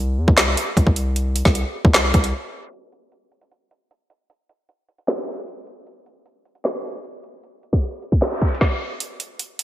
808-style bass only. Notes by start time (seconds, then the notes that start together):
Already playing: C2
0.18 E2
0.28 C2
0.77 C2
0.87 C2
1.45 C2
1.85 C2
2.14 C2